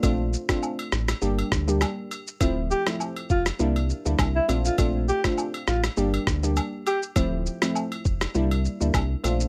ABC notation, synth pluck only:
X:1
M:4/4
L:1/16
Q:"Swing 16ths" 1/4=101
K:Dm
V:1 name="Synth pluck"
[A,CDF]2 z [A,CDF] z4 [G,B,DG]2 z [G,B,DG] z4 | [F,A,CE]2 z [F,A,CE] z4 [G,B,DE]2 z [G,B,DE] z2 [A,CDF]2 | [A,CDF]2 z [A,CDF] z4 [G,B,DG]2 z [G,B,DG] z4 | [F,A,CE]2 z [F,A,CE] z4 [G,B,DE]2 z [G,B,DE] z2 [A,CDF]2 |]